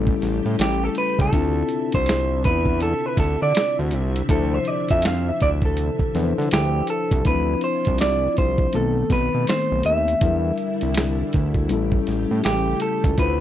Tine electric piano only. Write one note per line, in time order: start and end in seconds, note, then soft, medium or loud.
0.00 1.29 G3 medium
0.00 1.30 C#4 medium
0.00 1.31 E4 medium
0.00 1.32 A4 medium
1.31 4.25 D4 medium
1.31 4.26 E4 medium
1.31 4.24 F4 medium
1.36 4.27 C4 medium
4.28 6.10 F3 medium
4.28 6.11 D4 medium
4.28 6.12 E4 medium
4.33 6.12 C5 medium
6.15 7.26 F3 medium
6.15 7.25 D4 soft
6.15 7.26 E4 soft
6.15 6.24 B4 soft
6.23 7.30 C5 medium
7.25 7.33 E3 soft
7.25 8.71 D4 medium
7.25 8.72 E4 medium
7.29 8.74 F3 medium
7.29 8.73 C4 medium
8.73 10.20 D#3 medium
8.73 10.18 A3 medium
8.73 10.19 C4 medium
8.77 10.21 B3 medium
10.21 10.29 F#3 soft
10.21 11.67 D4 medium
10.21 11.68 E4 medium
10.25 11.67 G3 medium
10.25 11.69 A#4 medium
11.69 13.14 G3 medium
11.69 13.15 C#4 medium
11.69 13.16 E4 medium
11.73 13.17 A4 medium
13.17 13.40 D4 medium
13.17 13.40 E4 medium
13.17 13.40 F4 medium
13.22 13.40 C5 medium